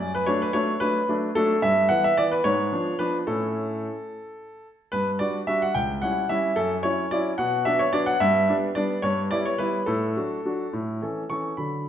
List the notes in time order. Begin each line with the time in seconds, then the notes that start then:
0.00 F#2
0.15 B4
0.26 F#3 A3 D4 C#5
0.42 B4
0.53 F#3 A3 D4 C#5
0.80 F#3 A3 D4 B4
1.09 F#3 A3 D4
1.35 F#3 A3 D4 A4
1.62 G2 E5
1.89 E3 B3 F#5
2.04 E5
2.17 E3 B3 D5
2.31 B4
2.44 G#2 C#5
2.72 F3 B3 D4
2.99 F3 B3 D4 B4
3.27 A2 C#4 E4 A4
4.92 G2 B4
5.19 G3 D4 F#4 D5
5.47 G3 D4 F#4 E5
5.62 F#5
5.74 C#2 G5
6.02 G3 C#4 E4 F#5
6.29 G3 C#4 E4 E5
6.56 F#2 A4
6.83 F#3 C#4 E4 C#5
7.11 F#3 C#4 E4 D5
7.38 B2 F#5
7.65 F#3 B3 D4 E5
7.79 C#5
7.93 F#3 B3 D4 D5
8.06 F#5
8.20 G2 E5
8.49 G3 B3 D4
8.75 G3 B3 D4 D5
9.02 G2 C#5
9.31 G3 B3 E4 D5
9.46 C#5
9.58 G3 B3 E4 B4
9.86 A2 A4
10.17 F#3 D4 F#4
10.45 F#3 D4 F#4
10.73 A2
11.01 E3 C#4 A4
11.30 E3 C#4 A4 C#6
11.57 D3 F#3 D4 A4 B5